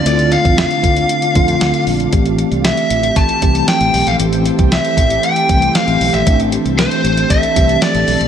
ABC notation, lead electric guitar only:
X:1
M:4/4
L:1/16
Q:1/4=116
K:Aphr
V:1 name="Lead electric guitar"
d2 f2 f8- f2 z2 | z4 e4 a4 g3 f- | f z3 e4 g4 f3 e- | e z3 c4 e4 d4 |]